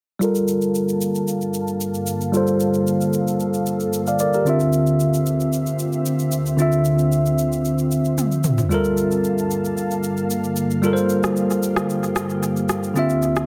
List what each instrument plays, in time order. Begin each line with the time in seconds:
0.19 ambient pad G2 D3 A#3 F5 A5, tine electric piano G3 F4 A4, shaker
0.24 tine electric piano A#4
0.35 shaker
0.48 shaker
0.62 shaker
0.75 shaker
0.89 shaker
1.01 shaker
1.15 shaker
1.28 shaker
1.41 shaker
1.54 shaker
1.68 shaker
1.81 shaker
1.94 shaker
2.07 shaker
2.21 shaker
2.32 tine electric piano G3 F4 A4, ambient pad A4, shaker
2.37 tine electric piano C5
2.47 shaker
2.60 shaker
2.74 shaker
2.87 shaker
3.01 shaker
3.13 shaker
3.27 shaker
3.40 shaker
3.54 shaker
3.66 shaker
3.80 shaker
3.93 shaker
4.07 tine electric piano D5 F5, shaker
4.19 tine electric piano A#4 D5, shaker
4.33 tine electric piano G4 A#4, shaker
4.45 ambient pad D2 C4 F4 E5, tine electric piano D3 C4 F4, shaker
4.49 tine electric piano E5
4.60 shaker
4.73 shaker
4.87 shaker
5.00 shaker
5.14 shaker
5.26 shaker
5.40 shaker
5.53 shaker
5.66 shaker
5.79 shaker
5.93 shaker
6.06 shaker
6.19 shaker
6.32 shaker
6.46 shaker
6.57 tine electric piano D3 C4 F4, shaker
6.62 tine electric piano E5
6.72 shaker
6.85 shaker
6.99 shaker
7.12 shaker
7.26 shaker
7.38 shaker
7.52 shaker
7.65 shaker
7.78 shaker
7.91 shaker
8.05 shaker
8.18 high tom, shaker
8.31 shaker
8.44 mid tom, shaker
8.58 floor tom, shaker
8.69 ambient pad G2 D3 A#3 F5 A5, tine electric piano G3 F4 A4, shaker
8.74 tine electric piano A#4
8.84 shaker
8.97 shaker
9.11 shaker
9.24 shaker
9.38 shaker
9.51 shaker
9.65 shaker
9.77 shaker
9.91 shaker
10.03 shaker
10.17 shaker
10.30 shaker
10.44 shaker
10.56 shaker
10.71 shaker
10.82 tine electric piano G3 F4 A4, ambient pad G4, shaker
10.87 tine electric piano A#4
10.93 tine electric piano C5, shaker
11.09 shaker
11.23 cross-stick, shaker
11.36 shaker
11.50 shaker
11.63 shaker
11.76 cross-stick, shaker
11.90 shaker
12.03 shaker
12.16 cross-stick, shaker
12.30 shaker
12.43 shaker
12.56 shaker
12.69 cross-stick, shaker
12.83 shaker
12.94 ambient pad D2 C4 F4 E5, tine electric piano D3 C4 F4, shaker
12.99 tine electric piano E5
13.09 shaker
13.22 shaker
13.36 cross-stick, shaker